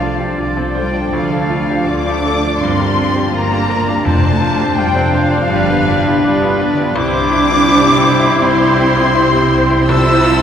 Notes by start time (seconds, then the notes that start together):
Already playing: C2 C3 F3 A3 C4 D4 F4 G4 C5 D5 F5
0.02 D3 F4 C5 D5
0.15 D4
0.20 F3 D4 G4 A4 C5
0.38 C2 D3 F4 C5 D5
0.57 F3 C4 D4 A4 C5
0.63 D4
0.75 D3 G3 F4 C5 D5 G5
0.79 C5
0.87 A3
0.94 F3 D4 A4 C5 D5
1.10 D2 D3 F3 F4 F5
1.15 D5
1.32 F3 D4 A4 F5
1.37 D4
1.50 D3 F4 D5
1.62 F4
1.70 F3 D4 G4 A4 F5
1.87 D2 D3 D4 F4 A4 D5 D6
2.08 F3 A3 D4 F4 A4 F5
2.26 D3 F4 A4 D5
2.37 A3
2.44 F3 D4 A4 D5 F5
2.60 G1 G2 F3 C4 F4 A#4 D5 C6
2.79 G3 D4 G4 A#4 F5
2.86 A#3
2.98 F3 F4 A#4 D5
3.10 D4
3.16 G3 D4 G4 F5
3.32 G1 F3 A#3 F4 A#4 D5 A#5
3.51 G3 A#3 D4 G4 F5
3.57 D4
3.70 F3 F4 A#4 D5
3.80 D3
3.88 G3 D4 G4 D5 F5
4.05 F1 F2 F3 A3 D4 F4 C5 D5 A5
4.24 C4 D4 A4 C5
4.29 C4
4.41 D4 F4 C5 D5
4.54 D4
4.59 C4 D4 G4 A4 C5
4.78 F1 G3 D4 F4 A4 C5 D5 G5
4.96 C4 D4 A4 C5
5.04 D4
5.14 F3 D4 F4 C5 D5 F5
5.28 C3 D5
5.34 C4 D4 A4 C5
5.50 G1 G2 G3 D4 F4 B4 D5
5.69 B3 F4 G4 B4
5.76 B3
5.87 G3 D4 F4 D5
6.00 D4
6.07 B3 E4 F4 G4 B4
6.24 G1 G3 D4 F4 G4 D5
6.42 B3 F4 G4 B4
6.49 D4
6.60 G3 D4 F4 B4 D5
6.72 D3 D5
6.79 B3 F4 G4 B4
6.95 C2 C3 D4 E4 G4 C5 D6
6.99 C4 E4
7.14 C5
7.21 C4
7.32 E4
7.45 E4
7.51 F4
7.69 E4 G4
7.87 C4
7.94 E4
8.04 C5
8.18 G3 E4
8.41 G2 C4 C6
8.60 C5
8.67 G3
8.79 E4
8.97 F4
9.15 E4 G4
9.33 C4
9.41 E4
9.52 C5
9.64 G3
9.70 E4
9.87 C2 C3 F3 A3 E4 F4 A4 E6
10.08 C5
10.13 C4
10.25 F4